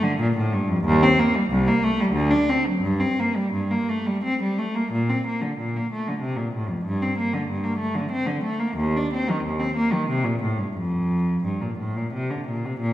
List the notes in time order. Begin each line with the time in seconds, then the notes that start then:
0.03 D3
0.20 A#2
0.37 A2
0.53 G2
0.68 F2
0.84 D#2
1.03 C4
1.19 A#3
1.36 G3
1.50 C2
1.67 A#3
1.83 A3
2.00 G3
2.13 D2
2.31 D4
2.49 C4
2.67 F#3
2.81 G2
3.00 C4
3.20 A#3
3.36 G3
3.53 G2
3.71 A#3
3.89 A3
4.06 G3
4.24 C4
4.43 G3
4.58 A3
4.74 A#3
4.92 A#2
5.09 C4
5.27 A#3
5.42 D3
5.58 A#2
5.76 A#3
5.92 A3
6.08 D3
6.21 C3
6.37 A#2
6.54 A2
6.69 F2
6.85 G2
7.02 C4
7.18 A#3
7.34 D3
7.49 G2
7.63 A#3
7.78 A3
7.95 D3
8.11 C4
8.27 D3
8.44 A3
8.59 A#3
8.77 D#2
8.96 D4
9.13 C4
9.30 D#3
9.44 D#2
9.59 C4
9.76 A#3
9.93 D#3
10.09 C3
10.24 A#2
10.42 A2
10.58 G2
10.77 F2
11.44 G2
11.61 A#2
11.79 A2
11.96 A#2
12.13 C3
12.30 D3
12.47 A#2
12.65 C3
12.80 A#2